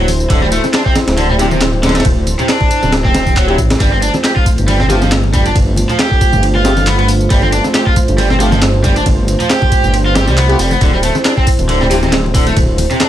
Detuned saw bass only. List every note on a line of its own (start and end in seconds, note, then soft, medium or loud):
0.00 0.26 D1 medium
0.30 0.59 D1 loud
1.07 2.01 D1 medium
2.05 2.34 D1 loud
2.83 3.58 D1 medium
3.58 3.75 A1 medium
3.80 4.09 G1 medium
4.58 5.51 G1 medium
5.56 5.85 G1 loud
6.33 7.27 G1 medium
7.30 7.60 G1 loud
8.08 9.02 G1 medium
9.06 9.35 G1 loud
9.84 10.29 G1 medium
10.28 10.55 C2 medium
10.59 10.76 F1 medium
10.81 11.10 D1 loud
11.59 12.52 D1 medium
12.56 12.85 D1 loud